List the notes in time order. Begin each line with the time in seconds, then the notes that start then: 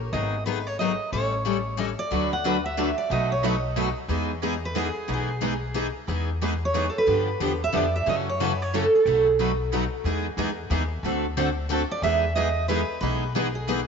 0.13 G#1 D#3 F#3 B3 D#4 G#4 D#5
0.46 D#3 F#3 B3 D#4 G#4 B4
0.67 C#5
0.79 D#3 F#3 B3 D#4 G#4 D#5
1.12 A1 E3 G3 C#4 E4 A4 C#5
1.45 E3 G3 C#4 E4 A4
1.77 E3 G3 C#4 E4 A4 D#5
1.99 D5
2.11 D2 D3 F#3 A3 D4 F#4 B4
2.33 F#5
2.44 D3 F#3 A3 D4 F#4 B4
2.66 E5
2.77 D3 F#3 A3 D4 F#4 B4
2.98 D5
3.10 B1 B2 F#3 A3 D#4 F#4 B4 D#5
3.32 C#5
3.43 B2 F#3 A3 D#4 F#4 B4 D#5
3.76 B2 F#3 A3 D#4 F#4 B4
4.08 E2 E3 G#3 B3 D#4 G#4
4.42 E3 G#3 B3 D#4 G#4
4.65 B4
4.75 E3 G#3 B3 D#4 G#4
5.08 B1 E3 G#3 B3 D#4 G#4
5.14 G#4
5.41 E3 G#3 B3 D#4 G#4
5.74 E3 G#3 B3 D#4 G#4
6.08 E2 E3 G#3 B3 D#4 G#4
6.41 E3 G#3 B3 D#4 G#4 B4
6.65 C#5
6.74 E3 G#3 B3 D#4 G#4
6.90 A4
6.98 B4
7.06 G2 D3 F3 B3 D4 G4
7.40 E2 D3 F3 B3 D4 G4
7.64 E5
7.72 F2 D3 F3 B3 D4 G4
7.77 D5
7.96 E5
8.06 F#2 C#3 E3 F#3 A3 C#4 E4 F#4 A4 D#5
8.29 C#5
8.40 C#3 E3 F#3 A3 C#4 E4 F#4 A4 B4
8.62 C#5
8.74 C#3 E3 F#3 A3 C#4 E4 F#4 A4
8.95 A4
9.06 B1 B2 F#3 A3 D#4 F#4 B4
9.26 G#4
9.39 B2 F#3 A3 D#4 F#4 B4
9.72 B2 F#3 A3 D#4 F#4 B4
10.04 E2 E3 G#3 B3 D#4 G#4
10.37 E2 E3 G#3 B3 D#4 G#4
10.70 D#2 E3 G#3 B3 D#4 G#4
11.03 D2 D3 A3 C4 F#4 A4
11.37 D3 A3 C4 F#4 A4
11.69 D3 A3 C4 F#4 A4
11.91 D5
12.02 E2 E3 G#3 B3 D#4 G#4 E5
12.35 E3 G#3 B3 D#4 G#4 D#5
12.68 E3 G#3 B3 D#4 G#4 B4
13.01 B1 E3 G#3 B3 D#4 G#4 B4
13.35 E3 G#3 B3 D#4 G#4
13.55 G#4
13.68 E3 G#3 B3 D#4 G#4